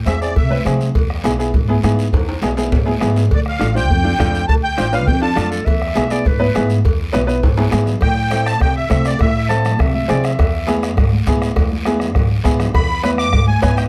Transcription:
0.06 E2 C4 E4 G#4 E5, bombo rim, cowbell, high conga, short guiro
0.21 C4 E4 G#4 D5, short guiro
0.36 C3 E5, bombo low, cowbell, high conga, long guiro
0.50 C4 E4 B4, high conga
0.65 C3 C4 E4 G#4, bombo rim, cowbell, high conga, low conga, short guiro
0.80 low conga, short guiro
0.95 E2, bombo low, cowbell, high conga, long guiro
1.10 bombo rim
1.24 B1 B3 E4 G#4, bombo rim, cowbell, high conga, short guiro
1.39 B3 E4 G#4, short guiro
1.54 G#2, bombo low, cowbell, high conga, long guiro
1.68 B3 E4 G#4, high conga
1.83 G#2 B3 E4 G#4, bombo rim, cowbell, high conga, short guiro
1.99 short guiro
2.13 E2, bombo low, cowbell, high conga, high timbale, long guiro
2.29 high timbale
2.42 B1 B3 E4 G#4, bombo rim, cowbell, high conga, low timbale, short guiro
2.57 B3 E4 G#4, high conga, low timbale, short guiro
2.72 G#2, bombo low, cowbell, high conga, low timbale, long guiro
2.85 B3 E4 G#4, high conga, low timbale
3.00 G#2 B3 E4 G#4, bombo rim, cowbell, high conga, low conga, low timbale, short guiro
3.16 low timbale, short guiro
3.31 D2 D5, bombo low, cowbell, high conga, long guiro
3.46 F5, bombo rim
3.59 A1 D4 F4 A4, bombo rim, cowbell, high conga, short guiro
3.75 D4 F4 C5 G5, high conga, short guiro
3.90 F2, bombo low, cowbell, high conga, long guiro
4.04 D4 F4 A4, high conga
4.18 F2 D4 F4 A4, bombo low, bombo rim, cowbell, high conga, low timbale, short guiro
4.35 short guiro
4.48 D2 A5, bombo low, cowbell, high conga, long guiro
4.64 G5
4.78 A1 D4 F4 C5, bombo rim, cowbell, high conga, short guiro
4.92 D4 F4 B4 F5, short guiro
5.07 F2 G5, bombo low, cowbell, high conga, long guiro
5.21 D4 F4 A4 A5
5.35 F2 D4 F4 A4, bombo rim, cowbell, high conga, low conga, short guiro
5.51 A4, short guiro
5.66 E2 E5, bombo low, cowbell, high conga, long guiro
5.82 bombo rim
5.95 B1 B3 E4 G#4, bombo rim, cowbell, high conga, short guiro
6.10 B3 E4 G#4 D5, high conga, short guiro
6.25 G#2 B4, bombo low, cowbell, high conga, long guiro
6.39 B3 E4 B4, high conga
6.54 G#2 B3 E4 G#4, bombo rim, cowbell, high conga, short guiro
6.70 short guiro
6.85 E2, bombo low, cowbell, high conga, long guiro
7.12 B1 B3 E4 B4, bombo rim, cowbell, high conga, short guiro
7.27 B3 E4 B4, short guiro
7.43 G#2, bombo low, cowbell, high conga, high timbale, long guiro
7.57 B3 E4 G#4, high conga, high timbale
7.70 G#2 B3 E4 G#4, bombo rim, cowbell, high conga, low timbale, short guiro
7.86 low conga, low timbale, short guiro
8.01 A2 G5, bombo low, bombo rim, cowbell, long guiro
8.30 C4 E4 A4, bombo rim, cowbell, high conga, short guiro
8.46 A5, bombo rim, short guiro
8.60 C3 G5, bombo low, bombo rim, cowbell, long guiro
8.76 E5
8.90 C3 C4 E4 A4 E5, bombo low, bombo rim, cowbell, high conga, short guiro
9.05 D5, bombo rim, short guiro
9.19 A2 E5, bombo low, bombo rim, cowbell, long guiro
9.49 C4 E4 A4 A5, bombo rim, cowbell, high conga, short guiro
9.65 bombo rim, low conga, short guiro
9.79 C3 E5, bombo low, bombo rim, cowbell, long guiro
9.94 E5, high conga
10.08 C3 C4 E4 G#4 D5, bombo rim, cowbell, high conga, low conga, low timbale, short guiro
10.24 E5, bombo rim, short guiro
10.39 E2, bombo low, bombo rim, cowbell, long guiro
10.67 B3 E4 G#4, bombo rim, cowbell, high conga, short guiro
10.83 bombo rim, short guiro
10.97 G#2, bombo low, bombo rim, cowbell, long guiro
11.13 high conga
11.27 G#2 B3 E4 G#4, bombo low, bombo rim, cowbell, high conga, short guiro
11.42 bombo rim, short guiro
11.56 E2, bombo low, bombo rim, cowbell, high conga, long guiro
11.72 high conga
11.85 B3 E4 G#4, bombo rim, cowbell, high conga, short guiro
12.00 bombo rim, low conga, short guiro
12.15 G#2, bombo low, bombo rim, cowbell, low conga, long guiro
12.44 G#2 B3 E4 G#4, bombo low, bombo rim, cowbell, short guiro
12.60 bombo rim, low conga, short guiro
12.74 E2 B5, bombo low, bombo rim, cowbell, long guiro
13.03 B3 E4 B4 B5, bombo rim, cowbell, high conga, short guiro
13.18 D6, bombo rim, short guiro
13.33 G#2, bombo low, bombo rim, cowbell, long guiro
13.48 G#5, high conga
13.61 G#2 B3 E4 B4 G#5, bombo low, bombo rim, cowbell, high conga, short guiro
13.76 G5, bombo rim, short guiro

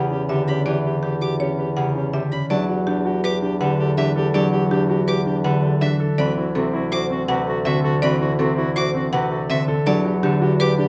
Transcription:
Already playing: E2 C#3 E3 G4 F#5
0.11 C#4 G4
0.29 D3 G4 E5
0.47 C#4 G4 B5
0.66 E3 E4 G4 D5
0.84 G4
1.03 G4
1.21 F#4 G4 D6
1.40 C#4 G4 C#5
1.58 G4 B4
1.76 C#3 G4 F#5
1.95 C#4 G4
2.13 D3 G4 E5
2.32 C#4 B5
2.50 E2 F#3 D4 G4 D5 A5
2.69 F#4 G4
2.87 D4 G4
3.05 F#4 G4
3.23 G4 B4 D6
3.42 D4 G4
3.60 D3 G4 B4 F#5
3.79 G4 A4
3.97 E3 D4 G4 E5
4.15 G4 A4
4.34 F#3 D4 G4 D5 A5
4.52 F#4 G4
4.70 D4 G4
4.89 F#4 G4
5.07 G4 B4 D6
5.26 D4 G4
5.44 D3 G4 B4 F#5
5.63 G4 A4
5.81 E3 D4 G4 E5
6.00 A4
6.18 D2 E3 C4 F#4 D5 B5
6.37 E4 F#4
6.55 C3 C4 F#4 A4
6.73 E4 F#4
6.92 F#4 C5 D6
7.10 C4 F#4
7.28 C3 F#4 B4 F#5
7.47 F#4 A4
7.65 D3 C4 F#4 E5
7.84 F#4 A4
8.02 E3 C4 F#4 D5 B5
8.20 E4 F#4
8.39 C3 C4 F#4 A4
8.57 E4 F#4
8.76 F#4 C5 D6
8.94 C4 F#4
9.13 C3 F#4 B4 F#5
9.31 F#4 A4
9.49 D3 C4 F#4 E5
9.68 A4
9.86 E2 F#3 D4 G4 D5 A5
10.04 F#4 G4
10.23 D3 D4 G4
10.41 F#4 G4
10.60 G4 B4 D6
10.78 D4 G4

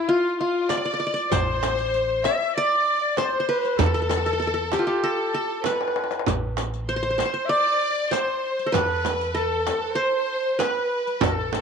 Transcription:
Already playing: E4
0.08 F4
0.39 F4
0.69 D5, riq, darbuka tek, frame drum
0.76 C5 D5
0.82 D5
0.86 darbuka ka
0.94 D5
1.00 D5
1.07 D5
1.14 D5, riq
1.25 D5
1.30 A1 C5, riq, frame drum, darbuka dum
1.63 riq, darbuka tek, frame drum
1.78 riq, darbuka ka
1.94 riq, darbuka ka
2.24 E5, riq, darbuka tek, frame drum
2.55 D5
3.01 D5
3.17 C5, riq, darbuka tek, frame drum
3.25 D5
3.31 C5, darbuka ka
3.40 C5
3.48 B4
3.65 riq
3.77 E2 A4, riq, frame drum, darbuka dum
3.86 A4
3.94 A4, riq, darbuka ka
4.02 A4
4.09 A4, riq, darbuka tek, frame drum
4.17 A4
4.26 A4, riq, darbuka ka
4.33 A4
4.40 A4, riq, darbuka ka
4.47 A4
4.54 A4
4.72 G4, riq, darbuka tek, frame drum
4.79 F4
4.86 G4
5.04 A4
5.12 G4
5.19 A4
5.34 A4, darbuka ka
5.61 B4 C5, frame drum
5.66 B4, riq, darbuka tek
5.73 darbuka ka
5.81 darbuka tek
5.88 darbuka ka
5.96 darbuka tek
6.04 darbuka ka
6.11 riq, darbuka tek
6.19 darbuka ka
6.26 A1, riq, frame drum, darbuka dum
6.57 riq, darbuka tek, frame drum
6.73 riq, darbuka ka
6.88 C5, riq, darbuka ka
6.96 C5
7.03 C5
7.10 C5
7.18 C5, riq, darbuka tek, frame drum
7.25 C5
7.34 C5
7.45 D5 E5
7.52 D5
8.11 C5, riq, darbuka tek, frame drum
8.28 darbuka ka
8.59 riq
8.66 A4
8.72 E2 B4, riq, frame drum, darbuka dum
9.05 riq, darbuka tek, frame drum
9.21 riq, darbuka ka
9.35 A4, riq, darbuka ka
9.67 riq, darbuka tek, frame drum
9.82 B4
9.95 C5
10.44 C5
10.59 B4, riq, darbuka tek, frame drum
10.77 darbuka ka
11.06 B4, riq
11.21 A1 A4 A#4, riq, frame drum, darbuka dum
11.38 A4
11.53 riq, darbuka tek, frame drum

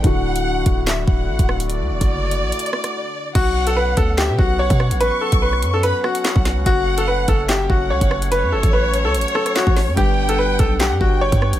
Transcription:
0.02 D1 D3 A3 D4 E4 F#4 F#5, kick, closed hi-hat
0.06 F#4
0.36 closed hi-hat
0.66 D1, kick, closed hi-hat
0.87 E5, snare, clap, closed hi-hat
1.07 D1 F#5, kick
1.28 A1
1.39 D1, kick, closed hi-hat
1.49 cross-stick
1.60 closed hi-hat
1.69 D5, closed hi-hat
1.80 D2
1.90 D1
2.01 F#1, kick, closed hi-hat
2.31 closed hi-hat
2.43 A1
2.52 closed hi-hat
2.59 closed hi-hat
2.66 closed hi-hat
2.73 cross-stick
2.84 cross-stick, closed hi-hat
3.35 B1 F#3 B3 C#4 F#4 F#5, kick, closed hi-hat, crash
3.67 A4, closed hi-hat
3.76 B4
3.97 D2 A4, kick, closed hi-hat
4.18 G4 E5, snare, clap, closed hi-hat
4.29 B2
4.38 B1 F#4 F#5, kick
4.59 C#5
4.70 B2, kick, closed hi-hat
4.80 cross-stick
4.91 A1, closed hi-hat
5.00 B4 C#6, closed hi-hat
5.21 A4
5.32 B1, kick, closed hi-hat
5.42 B4
5.53 cross-stick
5.62 F#2, closed hi-hat
5.74 A4
5.83 B4 B5, closed hi-hat
6.04 F#4 F#5, cross-stick
6.15 closed hi-hat
6.25 snare, clap, closed hi-hat
6.36 B1, kick
6.45 snare, closed hi-hat
6.56 C#2
6.66 F#1 A3 F#4 F#5, kick, closed hi-hat
6.98 A4, closed hi-hat
7.08 B4
7.28 F#1 A4, kick, closed hi-hat
7.49 G4 E5, snare, clap, closed hi-hat
7.70 F#1 F#4 F#5, kick
7.90 C#2 C#5
8.01 F#1, kick, closed hi-hat
8.11 cross-stick
8.22 closed hi-hat
8.32 B4 C#5, closed hi-hat
8.43 F#2
8.52 F#1 A4
8.63 A1, kick, closed hi-hat
8.73 B4
8.94 closed hi-hat
9.05 C#2 A4
9.14 A1, closed hi-hat
9.21 closed hi-hat
9.28 closed hi-hat
9.35 A4, cross-stick
9.46 cross-stick, closed hi-hat
9.56 F#4, snare, clap, closed hi-hat
9.67 A1, kick
9.76 snare, open hi-hat
9.88 F#2
9.96 G1 G3 B3 D4 G4 B4 G5, kick, closed hi-hat
10.29 A4, closed hi-hat
10.39 B4
10.59 B1 A4, kick, closed hi-hat
10.80 G4 F#5, snare, clap, closed hi-hat
10.91 G2
11.01 G1 F#4 G5, kick
11.21 C#5
11.32 G2, kick, closed hi-hat
11.42 cross-stick
11.53 F#1, closed hi-hat

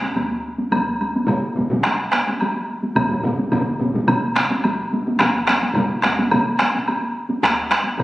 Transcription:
0.02 taiko high
0.16 taiko, taiko high, high woodblock
0.59 taiko high
0.72 taiko, taiko high, high woodblock
1.01 taiko high, high woodblock
1.16 taiko high
1.27 taiko low-mid, taiko mid, taiko high, high woodblock
1.56 taiko, taiko low-mid, taiko mid, taiko high
1.70 taiko low-mid, taiko mid, taiko high
1.84 taiko rim, taiko high, high woodblock
2.12 taiko rim, taiko high
2.28 taiko high
2.41 taiko high, high woodblock
2.83 taiko high
2.96 taiko, taiko low-mid, taiko mid, taiko high, high woodblock
3.09 taiko low-mid, taiko mid
3.23 taiko low-mid, taiko mid, taiko high
3.39 taiko high
3.52 taiko low-mid, taiko mid, taiko high, high woodblock
3.79 taiko low-mid, taiko mid, taiko high
3.94 taiko low-mid, taiko mid, taiko high
4.08 taiko low-mid, taiko mid, taiko high, high woodblock
4.36 taiko rim, taiko, taiko high
4.50 taiko high
4.64 taiko, taiko high, high woodblock
4.93 taiko high
5.07 taiko high
5.19 taiko rim, taiko, taiko high, high woodblock
5.47 taiko rim, taiko high, high woodblock
5.63 taiko high
5.75 taiko low-mid, taiko mid, taiko high, high woodblock
6.03 taiko rim, taiko, taiko high
6.19 taiko high
6.31 taiko low-mid, taiko mid, taiko high, high woodblock
6.59 taiko rim, taiko high
6.74 taiko high
6.88 taiko high, high woodblock
7.29 taiko high
7.43 taiko rim, taiko, taiko high, high woodblock
7.71 taiko rim, taiko high, high woodblock
7.84 taiko high
7.98 taiko low-mid, taiko mid, taiko high, high woodblock

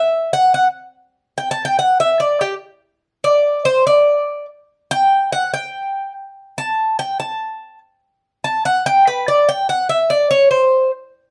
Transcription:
Already playing: E5
0.33 F#5
0.54 F#5
1.38 G5
1.51 A5
1.65 G5
1.79 F#5
2.00 E5
2.20 D5
2.41 G4
3.24 D5
3.65 C5
3.87 D5
4.91 G5
5.32 F#5
5.54 G5
6.58 A5
6.99 G5
7.20 A5
8.44 A5
8.65 F#5
8.86 G5
9.07 B4
9.28 D5
9.49 G5
9.69 F#5
9.89 E5
10.10 D5
10.31 C#5
10.51 C5

